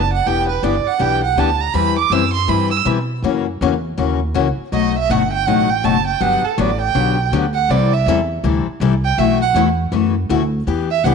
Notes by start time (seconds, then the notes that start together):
Already playing: F#1 A5
0.13 F#5
0.26 E1 E3 B3 D4 G4 G5
0.49 B4
0.63 G1 E3 B3 D4 G4 D5
0.85 F#5, muted upright bass stroke
0.99 B1 E3 B3 D4 G4 G5
1.24 F#5
1.36 D2 E3 B3 D4 G4 A5
1.61 A#5
1.74 E2 E3 G3 C4 E4 B4 B5
1.99 D6
2.10 F#2 E3 G3 C4 E4 B4 E6
2.34 C6
2.48 G2 E3 G3 C4 E4 B4 B5
2.71 E6
2.85 B2 E3 G3 C4 E4 B4
3.22 F#2 C#3 E3 A#3 C#4 F#4
3.61 E2 C#3 E3 A#3 C#4 F#4
3.97 D#2 C#3 E3 A#3 C#4 F#4
4.34 C#2 C#3 E3 A#3 C#4 F#4
4.58 muted upright bass stroke
4.72 B1 B2 F#3 A3 D#4 F#4 D#5
4.98 E5
5.09 G1 B2 F#3 A3 D#4 F#4 F#5
5.33 G5
5.47 A1 B2 F#3 A3 D#4 F#4 F#5
5.70 G5
5.84 F#1 B2 F#3 A3 D#4 F#4 A5
6.07 G5
6.20 G1 D3 F#3 B3 D4 G4 F#5
6.44 A4, muted upright bass stroke
6.58 A1 D3 F#3 B3 D4 G4 D5
6.82 G5
6.95 B1 D3 F#3 B3 D4 G4
7.32 D2 D3 F#3 B3 D4 G4
7.54 F#5
7.69 C2 C3 E3 G3 C4 E4 A4 D5
7.93 E5
8.06 E2 C3 E3 G3 C4 E4 A4
8.44 D2 C3 E3 G3 C4 E4 A4
8.67 muted upright bass stroke
8.80 C2 C3 E3 G3 C4 E4 A4
9.05 G5
9.18 B1 B2 E3 A3 E4 F#4 E5
9.42 F#5
9.54 E2 B2 E3 A3 E4 F#4
9.92 F#2 B2 E3 A3 E4 F#4
10.29 D2 B2 E3 A3 E4 F#4
10.67 E2 E3 B3 D4 G4
10.91 E5
11.03 C2 E3 B3 D4 G4 F#5